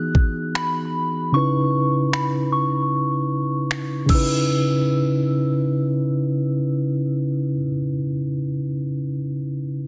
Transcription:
0.00 1.28 E3 medium
0.00 1.29 B3 medium
0.00 1.29 D#4 medium
0.00 1.30 F#4 medium
0.00 1.30 G#4 medium
0.00 0.58 F#6 loud
0.15 kick medium
0.55 1.36 B5 medium
0.55 finger snap loud
1.32 4.05 C#3 medium
1.32 4.05 C#4 medium
1.32 4.06 D#4 medium
1.32 4.07 E4 medium
1.32 2.15 C#6 medium
1.36 4.07 B4 medium
2.13 2.27 B5 medium
2.13 finger snap loud
2.52 4.06 C#6 medium
3.71 finger snap medium
4.06 7.51 C#3 medium
4.06 7.53 C#4 medium
4.06 7.55 E6 medium
4.06 kick medium
4.06 crash medium
4.10 7.55 D#4 medium
4.10 7.57 E4 medium
4.15 7.59 B4 medium

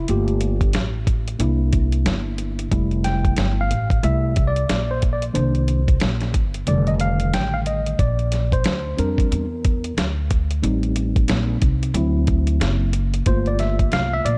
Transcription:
0.08 0.71 G1 loud
0.08 0.55 A3 medium
0.08 0.55 A#3 soft
0.08 0.55 F4 medium
0.08 0.71 G4 medium
0.08 closed hi-hat medium
0.28 closed hi-hat soft
0.41 closed hi-hat medium
0.61 kick medium
0.61 closed hi-hat soft
0.73 1.37 A1 medium
0.73 snare loud
0.73 closed hi-hat medium
1.07 kick medium
1.07 closed hi-hat medium
1.28 closed hi-hat medium
1.39 2.02 C2 loud
1.39 2.67 A#3 medium
1.39 2.68 D4 soft
1.39 2.68 E4 medium
1.39 closed hi-hat loud
1.73 kick loud
1.73 closed hi-hat medium
1.92 closed hi-hat medium
2.05 2.68 G1 medium
2.05 snare loud
2.05 closed hi-hat medium
2.38 closed hi-hat medium
2.59 closed hi-hat medium
2.71 3.35 F1 loud
2.71 3.67 G3 medium
2.71 3.66 A3 soft
2.71 3.67 E4 medium
2.71 kick loud
2.71 closed hi-hat medium
2.91 closed hi-hat soft
3.04 3.61 G5 medium
3.04 snare soft
3.04 closed hi-hat medium
3.25 kick medium
3.25 closed hi-hat soft
3.36 3.69 G1 medium
3.36 snare loud
3.36 closed hi-hat medium
3.61 4.06 F5 medium
3.71 4.02 A1 medium
3.71 closed hi-hat medium
3.90 kick loud
3.90 closed hi-hat medium
4.03 4.66 C2 loud
4.03 4.33 G3 soft
4.03 4.33 A3 soft
4.03 4.34 E4 medium
4.03 4.49 E5 medium
4.03 closed hi-hat medium
4.36 kick loud
4.36 closed hi-hat medium
4.47 4.93 D5 medium
4.56 closed hi-hat medium
4.69 5.32 A#1 medium
4.69 snare loud
4.69 closed hi-hat medium
4.91 5.01 C5 medium
5.02 kick medium
5.02 closed hi-hat medium
5.13 5.23 D5 medium
5.22 closed hi-hat soft
5.33 5.98 C2 loud
5.33 5.81 D#3 soft
5.33 5.81 A#3 soft
5.33 5.81 D4 medium
5.33 5.97 C5 medium
5.33 closed hi-hat medium
5.55 closed hi-hat soft
5.68 closed hi-hat medium
5.88 kick medium
5.88 closed hi-hat soft
6.00 6.33 A#1 loud
6.00 snare loud
6.00 closed hi-hat medium
6.21 snare soft
6.21 closed hi-hat soft
6.34 6.66 G1 medium
6.34 kick medium
6.34 closed hi-hat medium
6.54 closed hi-hat medium
6.67 7.30 F1 loud
6.67 7.96 D3 medium
6.67 7.95 D#3 medium
6.67 7.95 G3 soft
6.67 7.96 A3 medium
6.67 6.88 D5 medium
6.67 closed hi-hat medium
6.87 6.93 D#5 medium
6.87 closed hi-hat soft
7.00 7.35 F5 loud
7.00 closed hi-hat medium
7.20 closed hi-hat medium
7.34 7.96 A1 medium
7.34 7.54 G5 loud
7.34 snare loud
7.34 closed hi-hat loud
7.54 7.60 F5 medium
7.66 7.97 D#5 medium
7.66 closed hi-hat medium
7.86 closed hi-hat soft
7.99 8.62 A#1 loud
7.99 8.54 D5 medium
7.99 kick loud
7.99 closed hi-hat medium
8.19 closed hi-hat soft
8.32 snare soft
8.32 closed hi-hat medium
8.52 9.00 C5 medium
8.52 kick medium
8.52 closed hi-hat medium
8.64 8.97 D2 medium
8.64 snare loud
8.64 closed hi-hat medium
8.97 9.30 F2 medium
8.97 9.44 G3 medium
8.97 9.44 C4 soft
8.97 9.45 D4 medium
8.97 9.94 A#4 medium
8.97 closed hi-hat medium
9.18 kick medium
9.18 closed hi-hat medium
9.31 9.94 E2 medium
9.31 closed hi-hat medium
9.65 kick loud
9.65 closed hi-hat medium
9.84 closed hi-hat medium
9.97 10.60 D2 medium
9.97 snare loud
9.97 closed hi-hat loud
10.31 kick medium
10.31 closed hi-hat medium
10.51 closed hi-hat soft
10.62 11.26 A1 loud
10.62 11.90 G3 medium
10.62 11.91 C4 medium
10.62 11.91 D#4 medium
10.62 closed hi-hat medium
10.83 closed hi-hat soft
10.96 closed hi-hat medium
11.16 kick medium
11.16 closed hi-hat medium
11.28 11.60 A#1 medium
11.28 snare loud
11.28 closed hi-hat medium
11.62 11.93 C2 medium
11.62 kick medium
11.62 closed hi-hat medium
11.83 closed hi-hat medium
11.94 12.57 D2 loud
11.94 12.90 F#3 medium
11.94 12.90 C4 medium
11.94 12.91 E4 medium
11.94 closed hi-hat loud
12.27 kick loud
12.27 closed hi-hat medium
12.47 closed hi-hat medium
12.60 13.23 F#1 medium
12.60 snare loud
12.60 closed hi-hat loud
12.93 closed hi-hat medium
13.14 closed hi-hat medium
13.26 13.89 G1 loud
13.26 14.38 A3 soft
13.26 14.38 A#3 soft
13.26 14.38 F4 medium
13.26 13.48 C5 medium
13.26 kick loud
13.26 closed hi-hat medium
13.46 13.61 D5 medium
13.46 closed hi-hat soft
13.59 13.94 E5 medium
13.59 snare soft
13.59 closed hi-hat medium
13.79 kick medium
13.79 closed hi-hat medium
13.91 14.23 C2 medium
13.91 14.13 F5 loud
13.91 snare loud
13.91 closed hi-hat medium
14.14 14.26 E5 loud
14.25 14.38 A#1 loud
14.25 14.38 D5 loud
14.25 closed hi-hat medium

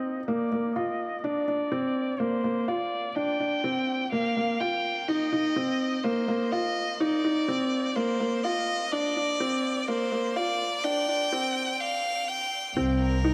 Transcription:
0.00 0.20 C4 medium
0.00 0.29 D#5 medium
0.28 0.48 A#3 medium
0.28 0.75 D5 medium
0.52 0.72 A#3 medium
0.76 1.15 F4 medium
0.76 1.26 D#5 medium
1.24 1.44 D4 medium
1.24 2.21 D5 medium
1.48 1.68 D4 medium
1.72 2.11 C4 medium
2.20 2.40 A#3 medium
2.20 2.70 C5 loud
2.44 2.64 A#3 medium
2.68 3.07 F4 medium
2.68 3.17 D5 medium
3.16 3.36 D4 medium
3.16 4.11 G5 loud
3.40 3.60 D4 medium
3.64 4.03 C4 medium
4.12 4.32 A#3 medium
4.12 4.62 F5 loud
4.37 4.56 A#3 medium
4.60 5.00 F4 medium
4.60 5.09 G5 loud
5.08 5.28 D#4 medium
5.08 6.05 D#5 loud
5.33 5.52 D#4 medium
5.56 5.96 C4 medium
6.04 6.24 A#3 medium
6.04 6.53 C5 medium
6.28 6.48 A#3 medium
6.52 6.92 F4 medium
6.52 7.02 D#5 loud
7.00 7.20 D#4 medium
7.00 7.97 D5 loud
7.24 7.44 D#4 medium
7.48 7.88 C4 medium
7.96 8.16 A#3 medium
7.96 8.45 C5 loud
8.20 8.40 A#3 medium
8.44 8.84 F4 medium
8.44 8.94 D#5 loud
8.92 9.12 D4 medium
8.92 9.90 D5 loud
9.16 9.36 D4 medium
9.40 9.80 C4 medium
9.88 10.08 A#3 medium
9.88 10.38 C5 loud
10.12 10.32 A#3 medium
10.36 10.76 F4 medium
10.36 10.86 D5 loud
10.84 11.04 D4 loud
10.84 11.82 G5 loud
11.08 11.28 D4 medium
11.32 11.72 C4 medium
11.80 12.30 F5 loud
12.28 12.76 G5 medium
12.76 13.34 C2 medium
12.76 13.16 C4 medium
13.00 13.34 A#4 medium
13.24 13.34 D#4 medium

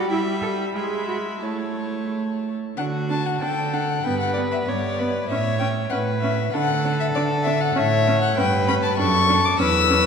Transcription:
0.09 0.76 G3 medium
0.09 0.19 E4 medium
0.09 0.70 E5 medium
0.09 0.71 B5 medium
0.42 0.50 A4 medium
0.74 1.42 G#3 medium
0.74 1.07 G#4 medium
0.74 1.44 E5 medium
0.74 1.40 B5 medium
1.08 1.16 F#4 medium
1.41 2.55 A3 soft
1.41 2.09 E4 medium
1.41 2.57 C#5 medium
1.41 2.53 A5 medium
2.77 3.34 D3 medium
2.77 2.86 D4 medium
2.77 3.43 F#4 medium
2.77 2.85 F#5 medium
3.10 3.18 D4 medium
3.10 3.28 A5 medium
3.26 3.40 F#5 medium
3.41 3.97 D3 medium
3.41 3.50 D4 medium
3.41 4.05 A4 medium
3.41 3.75 G5 loud
3.73 3.81 D4 medium
3.73 4.06 F#5 medium
4.04 4.59 G2 medium
4.04 4.13 B3 medium
4.04 4.70 B4 medium
4.04 4.20 G5 loud
4.20 4.33 F#5 medium
4.34 4.45 B3 medium
4.34 4.40 D5 medium
4.52 4.58 E5 medium
4.67 5.22 G2 medium
4.67 4.75 B3 medium
4.67 5.00 C#5 medium
4.67 5.28 D5 medium
4.99 5.08 B3 medium
4.99 5.29 B4 medium
5.28 5.83 A2 medium
5.28 5.39 C#4 medium
5.28 5.90 C#5 medium
5.28 5.59 E5 medium
5.59 5.69 C#4 medium
5.59 5.67 G5 medium
5.90 6.46 A2 medium
5.90 6.00 C#4 medium
5.90 6.55 B4 medium
5.90 5.98 F#5 medium
6.20 6.32 C#4 medium
6.20 6.52 E5 medium
6.53 7.08 D3 medium
6.53 6.63 D4 medium
6.53 7.77 A4 loud
6.53 6.99 F#5 loud
6.85 6.93 D4 medium
7.00 7.06 E5 medium
7.15 7.69 D3 medium
7.15 7.24 D4 medium
7.15 7.23 D5 loud
7.43 7.54 D4 medium
7.43 7.62 E5 loud
7.61 7.79 F#5 loud
7.75 8.30 A2 medium
7.75 7.83 C#4 medium
7.75 8.39 C#5 loud
7.75 8.21 E5 loud
8.07 8.15 C#4 medium
8.21 8.36 F#5 loud
8.37 8.92 G2 medium
8.37 8.46 C#4 medium
8.37 8.99 B4 loud
8.37 8.67 G5 loud
8.68 8.76 C#4 medium
8.68 8.74 B5 loud
8.83 8.97 A5 loud
8.98 9.53 F#2 loud
8.98 9.07 D4 medium
8.98 9.59 A4 loud
8.98 9.47 C#6 loud
9.29 9.37 D4 medium
9.45 9.59 D6 loud
9.59 10.06 E2 medium
9.59 9.67 C#4 medium
9.59 10.06 B4 loud
9.59 10.06 E6 loud
9.90 9.98 C#4 medium

